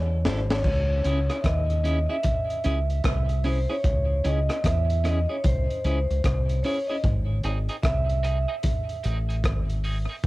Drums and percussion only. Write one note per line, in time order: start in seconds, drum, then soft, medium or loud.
0.25 snare medium
0.50 snare medium
0.64 kick loud
0.64 crash medium
1.05 closed hi-hat medium
1.30 cross-stick medium
1.30 closed hi-hat medium
1.44 kick loud
1.44 cross-stick loud
1.44 closed hi-hat medium
1.70 closed hi-hat medium
1.85 closed hi-hat medium
2.23 kick loud
2.23 closed hi-hat loud
2.50 closed hi-hat soft
2.64 closed hi-hat medium
2.90 closed hi-hat medium
3.04 kick loud
3.04 cross-stick loud
3.04 closed hi-hat medium
3.29 closed hi-hat medium
3.44 open hi-hat medium
3.84 kick loud
3.84 closed hi-hat medium
4.25 closed hi-hat medium
4.50 cross-stick medium
4.50 closed hi-hat medium
4.64 kick loud
4.64 cross-stick loud
4.64 closed hi-hat medium
4.90 closed hi-hat medium
5.05 cross-stick medium
5.05 closed hi-hat medium
5.44 kick loud
5.44 closed hi-hat loud
5.70 closed hi-hat medium
5.84 closed hi-hat medium
6.11 closed hi-hat soft
6.24 kick loud
6.24 cross-stick loud
6.24 closed hi-hat medium
6.49 closed hi-hat medium
6.64 open hi-hat medium
7.04 kick loud
7.04 closed hi-hat medium
7.44 closed hi-hat medium
7.69 closed hi-hat soft
7.83 kick loud
7.83 cross-stick loud
7.83 closed hi-hat medium
8.09 closed hi-hat medium
8.24 closed hi-hat medium
8.63 kick loud
8.63 closed hi-hat loud
8.89 closed hi-hat medium
9.04 closed hi-hat medium
9.30 closed hi-hat soft
9.44 kick loud
9.44 cross-stick loud
9.44 closed hi-hat medium
9.69 closed hi-hat medium
9.84 open hi-hat medium
10.23 kick loud
10.23 closed hi-hat medium